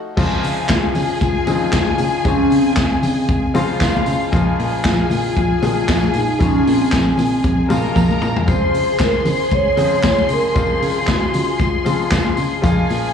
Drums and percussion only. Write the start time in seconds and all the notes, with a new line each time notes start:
0.17 kick, crash, tambourine
0.43 open hi-hat, tambourine
0.68 kick, snare, clap, closed hi-hat, tambourine, high conga
0.95 open hi-hat, tambourine, low conga
1.21 kick, closed hi-hat, tambourine, muted conga
1.47 open hi-hat, tambourine, muted conga, low conga
1.72 kick, snare, clap, closed hi-hat, tambourine, high conga
1.88 high conga
1.98 open hi-hat, tambourine
2.25 kick, closed hi-hat, tambourine, muted conga
2.51 open hi-hat, tambourine
2.76 kick, snare, clap, closed hi-hat, tambourine, high conga
3.03 open hi-hat, tambourine, low conga
3.29 kick, closed hi-hat, muted conga
3.55 open hi-hat, tambourine, muted conga
3.81 kick, snare, clap, closed hi-hat, tambourine, high conga
3.96 high conga
4.06 open hi-hat, tambourine
4.32 kick, closed hi-hat, tambourine
4.59 open hi-hat
4.84 kick, snare, clap, closed hi-hat, tambourine, high conga
5.10 open hi-hat, tambourine, low conga
5.37 kick, closed hi-hat, tambourine, muted conga
5.63 open hi-hat, tambourine, muted conga, low conga
5.89 kick, snare, clap, closed hi-hat, tambourine, high conga
6.04 high conga
6.13 open hi-hat, tambourine
6.40 kick, closed hi-hat, tambourine, muted conga
6.67 open hi-hat
6.92 kick, snare, clap, tambourine, high conga
7.17 open hi-hat, tambourine, low conga
7.44 kick, closed hi-hat, muted conga
7.70 open hi-hat, tambourine, muted conga
7.96 kick, high tom, tambourine, high conga
8.11 high conga
8.22 mid tom, tambourine
8.36 floor tom
8.48 kick, closed hi-hat, tambourine, muted conga
8.74 open hi-hat, tambourine
8.99 kick, snare, clap, closed hi-hat, tambourine, high conga
9.25 open hi-hat, tambourine, low conga
9.51 kick, closed hi-hat, muted conga
9.77 open hi-hat, tambourine, muted conga, low conga
10.03 kick, snare, clap, closed hi-hat, tambourine, high conga
10.18 high conga
10.29 open hi-hat, tambourine
10.56 kick, closed hi-hat, tambourine, muted conga
10.82 open hi-hat
11.07 kick, snare, clap, tambourine, high conga
11.34 open hi-hat, tambourine, low conga
11.59 kick, closed hi-hat, tambourine, muted conga
11.86 open hi-hat, tambourine, muted conga
12.11 kick, snare, clap, closed hi-hat, tambourine, high conga
12.27 high conga
12.37 open hi-hat, tambourine
12.63 kick, closed hi-hat, tambourine, muted conga
12.89 open hi-hat, tambourine